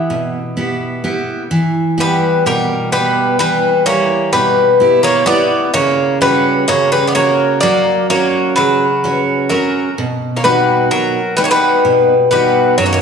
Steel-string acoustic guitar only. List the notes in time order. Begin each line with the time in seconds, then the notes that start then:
Already playing: B3 E4 G4
0.10 B2
0.57 B3 E4 G4
1.04 B3 E4 G4
1.51 E3
1.98 B3 E4 G4
2.46 B2
2.92 B3 E4 G4
3.40 E3
3.86 G3 E4 G4
4.33 B2
4.80 B3 E4 G4
5.26 B3 E4 G4
5.74 C#3
6.21 C#4 F#4 C#5
6.69 C#3
7.16 A#3 F#4 A#4
7.63 F#3
8.10 C#4 F#4 C#5
8.58 C#3
9.04 C#4 F#4 C#5
9.50 C#4 F#4 A#4
9.98 B2
10.45 B3 D#4 F#4
11.38 B3 D#4 F#4
11.85 B2
12.31 B3 D#4 F#4
12.78 F#2